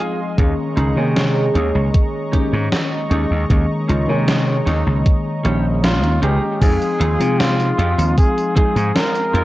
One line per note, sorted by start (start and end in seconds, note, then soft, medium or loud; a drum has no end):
0.00 0.33 F3 medium
0.00 0.33 G#3 medium
0.00 6.58 G#3 medium
0.00 0.34 C4 medium
0.00 0.19 D#4 medium
0.00 0.34 D#4 medium
0.00 0.19 F4 medium
0.00 0.19 G#4 loud
0.00 0.34 D#5 medium
0.00 0.34 F5 medium
0.00 0.36 G#5 medium
0.00 0.34 C6 medium
0.00 closed hi-hat medium
0.37 0.54 D#2 loud
0.37 0.92 D#3 medium
0.37 0.92 G#3 medium
0.37 0.92 A#3 medium
0.37 0.92 C#4 medium
0.37 0.93 G#4 medium
0.37 6.58 D#5 medium
0.37 6.58 A#5 medium
0.37 6.58 C#6 medium
0.37 kick loud
0.37 closed hi-hat medium
0.77 0.92 C#2 medium
0.77 0.97 C#4 medium
0.77 0.97 D#4 medium
0.77 0.97 G#4 medium
0.77 closed hi-hat medium
0.95 1.48 C3 medium
0.95 2.28 D#3 loud
0.95 2.28 G#3 medium
0.95 2.28 A#3 medium
0.95 2.29 G#4 loud
0.95 2.29 C#5 medium
1.17 snare loud
1.17 closed hi-hat medium
1.55 1.70 D#2 medium
1.55 1.75 C#4 medium
1.55 1.75 D#4 medium
1.55 1.75 G#4 medium
1.55 closed hi-hat medium
1.75 1.90 C#2 loud
1.94 kick loud
1.94 closed hi-hat medium
2.31 3.45 D#3 medium
2.31 3.45 G#3 medium
2.31 3.45 A#3 medium
2.31 2.53 C#4 medium
2.31 3.46 C#4 medium
2.31 2.53 D#4 medium
2.31 2.53 G4 medium
2.31 kick medium
2.31 closed hi-hat medium
2.53 2.68 G#2 medium
2.72 snare loud
2.72 closed hi-hat medium
3.11 3.26 D#2 medium
3.11 3.31 C#4 medium
3.11 3.31 D#4 medium
3.11 3.31 G#4 loud
3.11 closed hi-hat medium
3.31 3.46 D#2 medium
3.49 3.65 D#2 medium
3.49 4.03 D#3 medium
3.49 4.04 G#3 medium
3.49 4.04 A#3 medium
3.49 4.04 C#4 medium
3.49 kick loud
3.49 closed hi-hat medium
3.88 4.04 C#2 medium
3.88 4.08 C#4 medium
3.88 4.09 D#4 medium
3.88 4.09 F4 loud
3.88 closed hi-hat medium
4.07 4.60 C3 medium
4.07 5.39 D#3 medium
4.07 5.40 G#3 medium
4.07 5.40 A#3 medium
4.07 5.41 G#4 loud
4.07 5.41 C#5 medium
4.28 snare loud
4.28 closed hi-hat medium
4.66 4.82 D#2 medium
4.66 4.86 C#4 medium
4.66 4.86 D#4 medium
4.66 4.87 G#4 medium
4.66 snare soft
4.66 closed hi-hat medium
4.87 5.01 C#2 loud
5.06 kick loud
5.06 closed hi-hat medium
5.43 6.03 A#1 medium
5.43 6.56 D#3 medium
5.43 6.57 G#3 medium
5.43 6.57 A#3 medium
5.43 5.64 C#4 medium
5.43 6.57 C#4 medium
5.43 5.65 D#4 medium
5.43 5.65 G4 medium
5.43 closed hi-hat medium
5.84 6.20 F4 medium
5.84 snare loud
5.84 closed hi-hat medium
6.03 6.18 D#2 medium
6.03 closed hi-hat soft
6.22 6.38 C#2 loud
6.22 6.42 C#4 medium
6.22 6.42 D#4 medium
6.22 6.63 G4 medium
6.22 6.43 G#4 loud
6.22 closed hi-hat medium
6.61 6.77 F2 medium
6.61 7.15 F3 medium
6.61 7.15 G#3 medium
6.61 9.44 G#3 medium
6.61 7.15 C4 medium
6.61 7.16 D#4 medium
6.61 7.42 G#4 loud
6.61 7.16 G#4 medium
6.61 9.44 F5 medium
6.61 9.44 C6 medium
6.61 9.44 D#6 medium
6.61 kick loud
6.61 closed hi-hat medium
6.61 crash loud
6.61 tambourine soft
6.82 closed hi-hat soft
6.82 tambourine soft
7.00 7.16 D#2 medium
7.00 7.20 C4 medium
7.00 7.20 D#4 medium
7.00 7.20 F4 medium
7.00 7.20 G#4 medium
7.00 closed hi-hat loud
7.19 7.71 C3 medium
7.19 8.51 F3 loud
7.19 8.51 G#3 medium
7.19 8.52 C4 medium
7.19 8.52 D#4 medium
7.19 closed hi-hat medium
7.19 tambourine medium
7.40 8.17 F4 loud
7.40 snare loud
7.40 closed hi-hat medium
7.40 tambourine soft
7.60 closed hi-hat soft
7.60 tambourine soft
7.78 7.94 F2 medium
7.78 7.98 C4 medium
7.78 7.98 D#4 medium
7.78 7.98 F4 medium
7.78 7.98 G4 medium
7.78 closed hi-hat medium
7.98 8.13 D#2 loud
7.98 closed hi-hat medium
7.98 tambourine medium
8.18 8.54 G#4 loud
8.18 kick loud
8.18 closed hi-hat medium
8.18 tambourine soft
8.38 closed hi-hat soft
8.38 tambourine soft
8.55 9.44 F3 medium
8.55 9.44 G#3 medium
8.55 8.76 C4 medium
8.55 9.44 C4 medium
8.55 8.76 D#4 medium
8.55 9.44 D#4 medium
8.55 8.76 F4 medium
8.55 8.97 G#4 loud
8.55 8.76 G#4 medium
8.55 kick loud
8.55 closed hi-hat loud
8.76 8.91 G#2 medium
8.76 closed hi-hat medium
8.76 tambourine medium
8.96 9.44 A#4 loud
8.96 snare loud
8.96 closed hi-hat medium
8.96 tambourine soft
9.16 closed hi-hat soft
9.16 tambourine soft
9.34 9.44 F2 medium
9.34 9.44 C4 medium
9.34 9.44 D#4 medium
9.34 9.44 F4 medium
9.34 9.44 A#4 medium
9.34 closed hi-hat loud